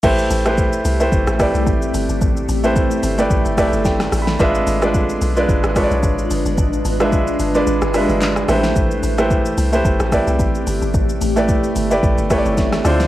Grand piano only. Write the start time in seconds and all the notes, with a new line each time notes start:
0.03 A3 E4 G4 B4 C5
0.45 A3 E4 G4 B4 C5
1.00 A3 E4 G4 B4 C5
1.39 A3 E4 G4 B4 D5
2.64 A3 E4 G4 B4 C5
3.18 A3 E4 G4 B4 D5
3.58 A3 E4 G4 B4 D5 E5
3.67 G5
3.86 G5
4.22 B5
4.39 G#3 D4 F4 B4 E5
4.82 G#3 D4 F4 B4 D5
5.36 G#3 D4 F4 B4 D5
5.76 G#3 D4 F4 B4 C#5
5.84 D5
7.00 G#3 D4 F4 B4 E5
7.54 G#3 D4 F4 B4 D5
7.94 G3 D4 F4 B4 E5
8.01 G#3
8.48 A3 E4 G4 B4 C5
9.18 A3 E4 G4 B4 C5
9.73 A3 E4 G4 B4 C5
10.12 A3 E4 G4 B4 D5
11.36 A3 E4 G4 B4 D5
11.91 A3 E4 G4 B4 D5
12.30 A3 E4 G4 B4 C#5
12.38 D5
12.85 D3 D4 E4 F4 C5